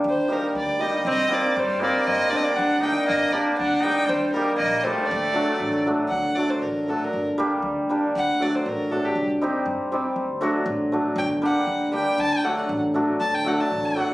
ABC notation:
X:1
M:2/4
L:1/16
Q:1/4=118
K:none
V:1 name="Fiddle"
c2 _B2 d2 _e2 | _e2 d2 c2 d2 | _e2 d/2 e/2 d ^f2 g2 | _e2 d2 ^f2 g2 |
c2 _B2 _e2 c2 | d6 z2 | ^f2 d c _B2 A B- | _B z6 z |
^f2 d c _B2 A G- | G z6 z | z8 | g2 ^f4 g2 |
a g ^f f2 z3 | a g ^f a2 f3 |]
V:2 name="Hammered dulcimer"
z2 [G,_B,_EG]2 z2 [G,B,EG]2 | z2 [G,C_EG]2 z2 [G,CEG]2 | z2 [G,_B,DG]2 z2 [G,B,DG]2 | z2 [G,_B,DG]2 z2 [G,B,DG]2 |
z2 [G,_B,_EG]2 z2 [G,B,EG]2 | z2 [^F,A,D^F]2 z2 [F,A,DF]2 | z2 [^F,A,D^F]2 z2 [F,A,DF]2 | z2 [G,_B,DG]2 z2 [G,B,DG]2 |
z2 [^F,A,D^F]2 z2 [F,A,DF]2 | z2 [G,C_EG]2 z2 [G,CEG]2 | z2 [^F,A,D^F]2 z2 [F,A,DF]2 | z2 [G,_B,DG]2 z2 [G,B,DG]2 |
z2 [^F,A,D^F]2 z2 [F,A,DF]2 | z2 [^F,A,D^F]2 z2 [F,A,DF]2 |]
V:3 name="Trumpet"
z8 | C2 _B,2 G,2 B,2 | _B,2 B,/2 C/2 B, D2 _E2 | _B,2 B,2 D2 _E2 |
G,2 G,2 _B,2 A,2 | A,6 z2 | z8 | z8 |
z8 | z8 | z8 | z8 |
z8 | z8 |]
V:4 name="Upright bass" clef=bass
_E,,2 z2 D,,4 | C,,2 z2 G,,4 | G,,,2 z2 D,,4 | G,,,2 z2 D,,4 |
_E,,2 z2 _B,,,4 | D,,2 z2 A,,,4 | D,,4 A,,,4 | G,,,4 D,,4 |
D,,4 A,,,4 | C,,4 G,,4 | D,,4 A,,,4 | G,,,4 D,,4 |
D,,4 A,,,4 | D,,4 A,,,4 |]